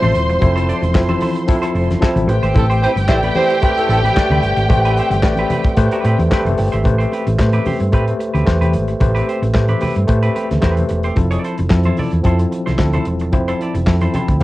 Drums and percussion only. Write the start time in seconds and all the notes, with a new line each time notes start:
0.03 closed hi-hat, high conga, low conga
0.15 closed hi-hat, muted conga
0.29 closed hi-hat
0.41 kick, closed hi-hat, muted conga, low conga
0.57 closed hi-hat
0.69 closed hi-hat, muted conga
0.82 closed hi-hat, high conga
0.95 kick, snare, clap
1.08 closed hi-hat, high conga
1.21 open hi-hat, high conga
1.36 closed hi-hat
1.48 kick, closed hi-hat
1.63 closed hi-hat
1.75 closed hi-hat, muted conga
1.90 snare, closed hi-hat, high conga
2.02 kick, snare, clap, muted conga
2.16 closed hi-hat, high conga, low conga
2.29 closed hi-hat
2.43 closed hi-hat
2.54 kick, closed hi-hat, muted conga, low conga
2.71 closed hi-hat
2.83 closed hi-hat
2.96 closed hi-hat, high conga
3.09 kick, snare, clap
3.22 closed hi-hat, high conga
3.35 open hi-hat, high conga
3.50 closed hi-hat
3.62 kick, closed hi-hat, muted conga
3.77 closed hi-hat
3.89 closed hi-hat, muted conga
4.03 closed hi-hat, high conga
4.15 kick, snare, clap, muted conga
4.30 closed hi-hat, high conga, low conga
4.43 closed hi-hat, muted conga
4.57 closed hi-hat
4.69 kick, closed hi-hat, low conga
4.85 closed hi-hat
4.97 closed hi-hat
5.10 closed hi-hat, high conga
5.23 kick, snare, clap, muted conga
5.36 closed hi-hat, high conga
5.50 closed hi-hat, muted conga, high conga, low conga
5.64 kick, closed hi-hat
5.77 kick, closed hi-hat
5.91 closed hi-hat
6.03 closed hi-hat, muted conga
6.18 closed hi-hat, high conga
6.32 kick, snare, clap
6.45 closed hi-hat, high conga, low conga
6.58 open hi-hat, muted conga
6.72 closed hi-hat
6.84 kick, closed hi-hat, muted conga, low conga
7.00 closed hi-hat
7.12 closed hi-hat, muted conga
7.27 closed hi-hat, high conga
7.39 kick, snare, clap, muted conga
7.53 closed hi-hat, high conga
7.65 open hi-hat, muted conga, high conga, low conga
7.80 closed hi-hat
7.92 kick, closed hi-hat
8.07 closed hi-hat
8.20 closed hi-hat
8.35 closed hi-hat, high conga
8.47 kick, snare, clap
8.62 closed hi-hat, high conga, low conga
8.73 closed hi-hat
8.88 closed hi-hat
9.00 kick, closed hi-hat, muted conga, low conga
9.16 closed hi-hat
9.29 closed hi-hat
9.43 closed hi-hat, high conga
9.54 kick, snare, clap, muted conga
9.68 closed hi-hat, high conga
9.81 open hi-hat, muted conga, high conga, low conga
9.96 closed hi-hat
10.08 kick, closed hi-hat
10.23 closed hi-hat
10.36 closed hi-hat, muted conga
10.51 snare, closed hi-hat, high conga
10.62 kick, snare, clap
10.77 closed hi-hat, high conga, low conga
10.89 closed hi-hat, muted conga
11.03 closed hi-hat
11.16 kick, closed hi-hat, low conga
11.31 closed hi-hat
11.44 closed hi-hat
11.58 closed hi-hat, high conga
11.70 kick, snare, clap
11.83 closed hi-hat, high conga
11.97 open hi-hat, muted conga, high conga, low conga
12.11 closed hi-hat
12.24 kick, closed hi-hat, muted conga
12.39 closed hi-hat
12.52 closed hi-hat, muted conga
12.67 snare, closed hi-hat, high conga
12.79 kick, snare, clap, muted conga
12.93 closed hi-hat, high conga, low conga
13.05 closed hi-hat, muted conga
13.20 closed hi-hat
13.33 kick, closed hi-hat, low conga
13.48 closed hi-hat
13.61 closed hi-hat, muted conga
13.75 closed hi-hat, high conga
13.87 kick, snare, clap, muted conga
14.01 closed hi-hat, high conga
14.14 closed hi-hat, muted conga, high conga, low conga
14.28 kick, closed hi-hat
14.40 closed hi-hat